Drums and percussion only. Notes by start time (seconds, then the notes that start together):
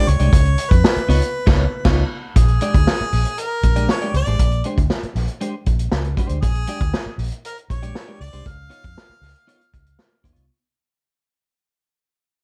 0.08 closed hi-hat
0.20 closed hi-hat
0.33 kick, closed hi-hat
0.45 closed hi-hat
0.58 closed hi-hat
0.71 kick, closed hi-hat
0.84 snare
0.96 closed hi-hat
1.09 open hi-hat
1.22 closed hi-hat
1.47 kick, snare, crash
1.85 kick, snare, crash
2.36 kick, closed hi-hat
2.48 closed hi-hat
2.61 closed hi-hat
2.74 kick, closed hi-hat
2.87 snare
3.12 open hi-hat
3.25 closed hi-hat
3.38 closed hi-hat
3.63 kick, closed hi-hat
3.76 closed hi-hat
3.89 snare
4.01 closed hi-hat
4.14 closed hi-hat
4.26 closed hi-hat
4.39 kick, closed hi-hat
4.51 closed hi-hat
4.64 closed hi-hat
4.78 kick, closed hi-hat
4.90 snare
5.03 closed hi-hat
5.16 snare, open hi-hat
5.28 closed hi-hat
5.41 closed hi-hat
5.66 kick, closed hi-hat
5.79 closed hi-hat
5.92 snare
6.04 closed hi-hat
6.17 kick, closed hi-hat
6.29 closed hi-hat
6.43 kick, closed hi-hat
6.55 closed hi-hat
6.67 closed hi-hat
6.81 kick, closed hi-hat
6.94 snare
7.19 open hi-hat
7.32 closed hi-hat
7.45 closed hi-hat
7.58 closed hi-hat
7.70 kick, closed hi-hat
7.83 closed hi-hat
7.95 snare
8.21 closed hi-hat
8.33 closed hi-hat
8.46 kick, closed hi-hat
8.71 closed hi-hat
8.84 kick, closed hi-hat
8.98 snare
9.23 snare, open hi-hat
9.36 closed hi-hat
9.49 closed hi-hat
9.61 closed hi-hat
9.74 kick, closed hi-hat
9.86 closed hi-hat
9.99 snare
10.24 kick, closed hi-hat
10.36 closed hi-hat